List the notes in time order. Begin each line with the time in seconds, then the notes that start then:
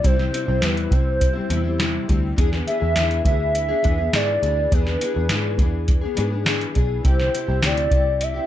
0.02 C2 C3 G3 C4 E4 C5, kick, closed hi-hat
0.16 G3 C4 E4, snare
0.31 C3 G3 C4, closed hi-hat
0.35 E4
0.46 C2 C4 E4
0.50 G3
0.60 E2 C3 G3 C4 E4, snare, closed hi-hat
0.64 B4
0.77 closed hi-hat
0.89 C2 C3 G3 C4 E4, kick, closed hi-hat
0.94 C5
1.21 kick, closed hi-hat
1.33 G3 C4 E4
1.48 E2 C3 G3 C4, closed hi-hat
1.52 E4
1.63 G3 C4 E4
1.78 C3 G3 C4 E4, snare, closed hi-hat
2.07 D2 C3 G3 C4, kick, closed hi-hat
2.11 E4
2.37 E2 E3 B3 D4 G#4, kick, closed hi-hat
2.52 D4 G#4, snare
2.56 B3
2.66 E3 B3 D4 G#4 E5, closed hi-hat
2.80 E2 B3 D4 G#4
2.96 E2 E3 B3 D4 G#4, snare, closed hi-hat
3.11 closed hi-hat
3.25 D2 E3 B3 D4 E5, kick, closed hi-hat
3.29 G#4
3.55 closed hi-hat
3.68 B3 D4 G#4
3.82 E2 E3 B3 D4, kick, closed hi-hat
3.86 G#4
3.98 D4 G#4
4.02 B3
4.13 G#2 E3 B3 D4 G#4 D5, snare, closed hi-hat
4.41 D2 E3 B3 D4 G#4, closed hi-hat
4.71 E2 E3 B3 D4 G#4 B4, kick, closed hi-hat
4.85 D4 G#4, snare
4.89 B3
5.00 E3 B3 D4 G#4, closed hi-hat
5.14 E2 D4 G#4
5.18 B3
5.29 G#2 E3 B3 D4 G#4, snare, closed hi-hat
5.56 E2 E3 B3 D4, kick, closed hi-hat
5.61 G#4
5.88 kick, closed hi-hat
6.01 B3 D4 G#4
6.15 G#2 E3 B3 D4, closed hi-hat
6.19 G#4
6.30 D4 G#4
6.34 B3
6.44 E3 B3 D4 G#4, snare, closed hi-hat
6.61 closed hi-hat
6.73 B1 E3 B3 D4, kick, closed hi-hat
6.78 G#4
7.03 C2 C3 C4 E4 G4 C5, kick, closed hi-hat
7.18 C4 E4 G4, snare
7.32 C3 C4 E4 G4, closed hi-hat
7.47 C2 C4 E4 G4
7.62 D2 C3 C4 E4 G4 D5, snare, closed hi-hat
7.77 closed hi-hat
7.90 C2 C3 C4 E4 G4, kick, closed hi-hat
8.21 E5, closed hi-hat
8.34 E4 G4
8.38 C4